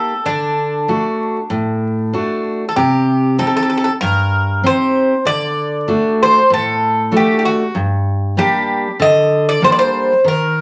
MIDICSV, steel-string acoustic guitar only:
0, 0, Header, 1, 2, 480
1, 0, Start_track
1, 0, Tempo, 624350
1, 200, Time_signature, 4, 2, 24, 8
1, 8159, End_track
2, 0, Start_track
2, 0, Title_t, "Steel-string acoustic guitar"
2, 0, Program_c, 0, 25
2, 0, Note_on_c, 0, 58, 44
2, 0, Note_on_c, 0, 63, 45
2, 0, Note_on_c, 0, 67, 51
2, 96, Note_off_c, 0, 58, 0
2, 99, Note_off_c, 0, 63, 0
2, 103, Note_off_c, 0, 67, 0
2, 196, Note_on_c, 0, 50, 63
2, 664, Note_off_c, 0, 50, 0
2, 678, Note_on_c, 0, 57, 45
2, 683, Note_on_c, 0, 66, 50
2, 684, Note_on_c, 0, 62, 35
2, 1064, Note_off_c, 0, 57, 0
2, 1065, Note_off_c, 0, 62, 0
2, 1067, Note_off_c, 0, 66, 0
2, 1152, Note_on_c, 0, 45, 66
2, 1623, Note_off_c, 0, 45, 0
2, 1640, Note_on_c, 0, 57, 46
2, 1642, Note_on_c, 0, 62, 43
2, 1648, Note_on_c, 0, 66, 43
2, 2026, Note_off_c, 0, 57, 0
2, 2028, Note_off_c, 0, 62, 0
2, 2028, Note_off_c, 0, 66, 0
2, 2125, Note_on_c, 0, 48, 68
2, 2590, Note_off_c, 0, 48, 0
2, 2603, Note_on_c, 0, 60, 50
2, 2606, Note_on_c, 0, 63, 45
2, 2614, Note_on_c, 0, 67, 52
2, 2987, Note_off_c, 0, 60, 0
2, 2989, Note_off_c, 0, 63, 0
2, 2994, Note_off_c, 0, 67, 0
2, 3086, Note_on_c, 0, 43, 64
2, 3551, Note_off_c, 0, 43, 0
2, 3564, Note_on_c, 0, 60, 46
2, 3568, Note_on_c, 0, 63, 42
2, 3573, Note_on_c, 0, 67, 44
2, 3948, Note_off_c, 0, 60, 0
2, 3951, Note_off_c, 0, 63, 0
2, 3952, Note_off_c, 0, 67, 0
2, 4039, Note_on_c, 0, 50, 61
2, 4507, Note_off_c, 0, 50, 0
2, 4519, Note_on_c, 0, 57, 47
2, 4526, Note_on_c, 0, 62, 42
2, 4526, Note_on_c, 0, 66, 48
2, 4905, Note_off_c, 0, 57, 0
2, 4907, Note_off_c, 0, 66, 0
2, 4909, Note_off_c, 0, 62, 0
2, 4999, Note_on_c, 0, 45, 64
2, 5466, Note_off_c, 0, 45, 0
2, 5470, Note_on_c, 0, 62, 45
2, 5474, Note_on_c, 0, 57, 51
2, 5478, Note_on_c, 0, 66, 52
2, 5858, Note_off_c, 0, 62, 0
2, 5861, Note_off_c, 0, 57, 0
2, 5863, Note_off_c, 0, 66, 0
2, 5956, Note_on_c, 0, 43, 64
2, 6423, Note_off_c, 0, 43, 0
2, 6436, Note_on_c, 0, 55, 54
2, 6440, Note_on_c, 0, 58, 44
2, 6446, Note_on_c, 0, 62, 54
2, 6821, Note_off_c, 0, 55, 0
2, 6821, Note_off_c, 0, 58, 0
2, 6826, Note_off_c, 0, 62, 0
2, 6916, Note_on_c, 0, 50, 68
2, 7382, Note_off_c, 0, 50, 0
2, 7394, Note_on_c, 0, 55, 52
2, 7398, Note_on_c, 0, 58, 44
2, 7403, Note_on_c, 0, 62, 47
2, 7778, Note_off_c, 0, 55, 0
2, 7781, Note_off_c, 0, 58, 0
2, 7782, Note_off_c, 0, 62, 0
2, 7875, Note_on_c, 0, 51, 65
2, 8159, Note_off_c, 0, 51, 0
2, 8159, End_track
0, 0, End_of_file